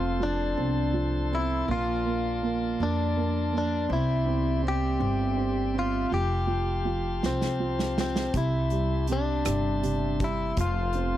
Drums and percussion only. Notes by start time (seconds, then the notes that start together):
7.23 snare
7.41 snare
7.79 snare
7.98 snare
8.16 snare
8.34 kick, closed hi-hat
8.70 closed hi-hat
9.07 closed hi-hat
9.45 cross-stick, closed hi-hat
9.83 closed hi-hat
10.20 kick, closed hi-hat
10.57 kick, closed hi-hat
10.93 closed hi-hat